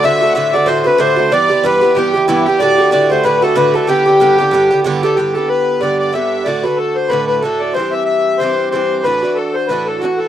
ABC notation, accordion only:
X:1
M:4/4
L:1/8
Q:"Swing" 1/4=186
K:G
V:1 name="Accordion"
e2 e d c B c2 | d2 B2 G2 E G | d2 d c B A B A | G6 z A |
G A B2 d d e2 | d B A c B B A d | c e e2 c2 c2 | B2 A c B A F A |]